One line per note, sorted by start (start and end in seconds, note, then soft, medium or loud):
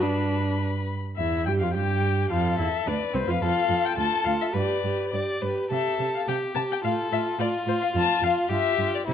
0.00 0.97 G2 soft
0.00 0.60 D4 medium
0.00 0.87 B4 soft
0.00 0.97 B5 soft
1.16 1.48 E2 medium
1.16 1.49 E4 soft
1.16 1.44 E5 medium
1.46 1.62 G2 medium
1.46 1.65 G4 medium
1.46 1.52 G5 medium
1.60 1.76 F2 medium
1.60 1.74 F4 soft
1.60 1.73 F5 soft
1.74 2.30 G2 medium
1.74 2.32 G4 medium
1.74 2.28 G4 soft
1.74 2.29 G5 medium
2.30 2.58 F2 medium
2.30 2.58 F4 medium
2.30 2.89 A4 soft
2.30 2.58 F5 medium
2.59 2.68 E2 medium
2.59 2.67 E4 medium
2.59 2.89 E5 medium
2.86 2.95 D2 medium
2.86 2.94 D4 medium
2.86 3.44 B4 medium
2.86 3.17 D5 medium
3.13 3.20 C2 medium
3.13 3.19 C4 medium
3.13 3.32 C5 medium
3.27 3.41 F2 medium
3.27 3.33 F4 medium
3.27 3.42 F5 medium
3.41 3.49 F2 medium
3.41 3.68 F4 medium
3.41 3.97 A4 medium
3.41 3.87 F5 medium
3.68 3.77 F2 soft
3.68 3.96 F4 medium
3.85 3.97 G5 medium
3.97 4.05 D2 medium
3.97 4.25 F4 medium
3.97 4.55 A4 medium
3.97 4.25 A5 medium
4.25 4.33 D2 medium
4.25 4.54 F4 medium
4.25 4.31 F5 medium
4.41 4.47 E5 medium
4.54 4.62 G2 medium
4.54 4.83 G4 soft
4.54 5.07 B4 medium
4.54 5.12 D5 medium
4.84 4.92 G2 soft
4.84 5.13 G4 soft
5.12 5.20 G2 soft
5.12 5.42 G4 soft
5.12 5.43 D5 medium
5.42 5.50 G2 soft
5.42 5.70 G4 soft
5.42 5.70 B4 soft
5.70 5.79 C3 medium
5.70 5.99 G4 soft
5.70 6.29 A4 medium
5.70 6.10 E5 medium
5.99 6.07 C3 soft
5.99 6.27 G4 soft
6.15 6.20 F5 medium
6.28 6.36 C3 soft
6.28 6.84 G4 soft
6.28 6.55 G4 soft
6.28 6.36 G5 medium
6.55 6.63 C3 soft
6.55 6.83 G4 soft
6.55 6.61 A5 medium
6.72 6.77 G5 medium
6.83 6.92 A2 medium
6.83 7.11 F4 medium
6.83 7.40 A4 medium
6.83 6.92 F5 medium
7.12 7.20 A2 soft
7.12 7.39 F4 medium
7.12 7.20 E5 medium
7.38 7.46 A2 medium
7.38 8.51 F4 medium
7.38 7.67 F4 soft
7.38 7.48 D5 medium
7.66 7.74 A2 medium
7.66 7.95 F4 medium
7.66 7.73 C5 medium
7.82 7.87 F5 medium
7.95 8.03 F2 medium
7.95 8.22 F4 medium
7.95 8.23 A5 medium
8.22 8.30 F2 soft
8.22 8.50 F4 medium
8.22 8.32 F5 medium
8.49 8.58 G2 medium
8.49 8.78 F4 medium
8.49 9.07 G4 medium
8.49 8.92 E5 medium
8.78 8.86 G2 medium
8.78 9.07 F4 soft
8.95 9.00 D5 medium
9.08 9.14 C3 medium
9.08 9.14 E4 soft
9.08 9.14 C5 medium